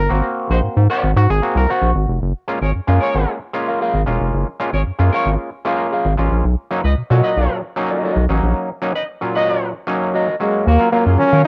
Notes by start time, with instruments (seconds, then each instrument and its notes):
Already playing: clav A#4
0.09 analog synth bass G#1, clav A#3 C4 F#4
0.50 analog synth bass A#1, horn section D#4 F#4 C5
0.63 analog synth bass G#2
0.77 analog synth bass G#2
0.90 horn section D#4 F#4 C5, clean electric guitar A#4 C5 F#5
1.03 analog synth bass G#1
1.16 analog synth bass G#2, clav F#4
1.30 analog synth bass G#1, clav G#4
1.42 clav A#3 C4 F#4
1.55 analog synth bass C2, clav A#4
1.69 clav F#4, clean electric guitar A#4 C5 F#5
1.82 analog synth bass A#1
1.95 analog synth bass G#1
2.08 analog synth bass F1
2.22 analog synth bass F#1
2.48 clav G#3 A#3 C#4 F4
2.62 analog synth bass G#1, horn section G#4 A#4 C#5
2.75 analog synth bass F#2
2.87 analog synth bass F#2, clav G#3 A#3 C#4 F4, clean electric guitar G#4 A#4 F5
3.01 horn section G#4 A#4 C#5
3.15 analog synth bass G#1, clean electric guitar G#4 A#4 F#5
3.53 clav G#3 A#3 C#4 F4
3.68 clean electric guitar G#4 A#4 F5
3.81 clean electric guitar G#4 A#4 F5
3.94 analog synth bass G#1
4.06 analog synth bass E1, clav G#3 A#3 C#4 F4
4.20 analog synth bass F1
4.34 analog synth bass F#1
4.60 clav G#3 A#3 C#4 F4
4.73 analog synth bass G#1, clav C#4 F4, horn section G#4 A#4 C#5
4.87 analog synth bass F#2
4.99 analog synth bass F#2, clav G#3 A#3 C#4 F4
5.13 clean electric guitar G#4 A#4 F5, horn section G#4 A#4 C#5
5.26 analog synth bass G#1
5.65 clav G#3 A#3 C#4 F4, clean electric guitar G#4 A#4 F5
5.93 clean electric guitar G#4 A#4 F5
6.05 analog synth bass G#1
6.18 analog synth bass A1, clav G#3 A#3 C#4 F4
6.31 analog synth bass A#1
6.44 analog synth bass B1
6.71 clav F#3 A#3 C#4 D#4
6.84 analog synth bass C#2, horn section D#4 B4 D#5
6.97 analog synth bass B2
7.10 clav A#2 F#3 C#4 F#4, analog synth bass B2, clean electric guitar F#4 A#4 D#5
7.24 horn section D#4 B4 D#5
7.37 analog synth bass B1, clean electric guitar F#4 A#4 F5
7.76 clav F#3 A#3 C#4 D#4
7.91 clean electric guitar F#4 A#4 D#5
8.04 clean electric guitar F#4 A#4 D#5
8.16 analog synth bass B1
8.29 analog synth bass A1, clav F#3 A#3 C#4 D#4
8.43 analog synth bass A#1
8.82 clav F#3 A#3 C#4 D#4
8.95 clav C#4 D#4, horn section D#4 B4 D#5
9.21 clav A#2 F#3 C#4 F4
9.35 horn section D#4 B4 D#5, clean electric guitar F#4 A#4 D#5
9.87 clav F#3 A#3 C#4 D#4
10.14 clean electric guitar F#4 A#4 D#5
10.40 clav F#3 A#3 C#4 F#4, trombone G#3
10.66 analog synth bass D#2, trombone A#3, horn section A#3 F#4 A#4
10.79 clav F#3 A#3 C#4 F4
10.92 clav F#3 A#3 C#4 F4, trombone A#3
11.06 analog synth bass F#2, horn section C#4 F4 G#4
11.18 analog synth bass D#3, horn section A#3 F#4 A#4, trombone C#4
11.33 analog synth bass D#3, horn section F#4 A#4 C#5, clean electric guitar F#4 C#5 F5